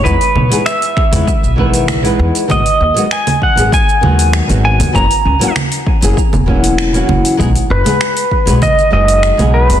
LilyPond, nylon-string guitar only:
\new Staff \with { instrumentName = "Nylon-string guitar" } { \time 4/4 \key gis \minor \tempo 4 = 98 <e gis b dis' gis'>16 r8 <e gis b dis' gis'>16 r8. <e gis b dis' b'>16 r8 <dis e gis b b'>8. <e gis b dis' b'>8. | <dis fis gis b fis'>16 r8 <dis fis gis b fis'>16 r8. <dis fis gis b gis'>16 r8 <dis fis gis b fis'>8. <dis fis gis b fis'>8. | <e fis ais cis' fis'>16 r8 <e fis ais cis' fis'>16 r8. <e fis ais cis' gis'>16 r8 <e fis ais cis' fis'>8. <e fis ais cis' fis'>8. | <fis gis b dis' gis'>16 r8 <fis gis b dis' gis'>16 r8. <fis gis b dis' b'>16 r8 <fis gis b dis' gis'>8. <fis gis b dis' gis'>8. | }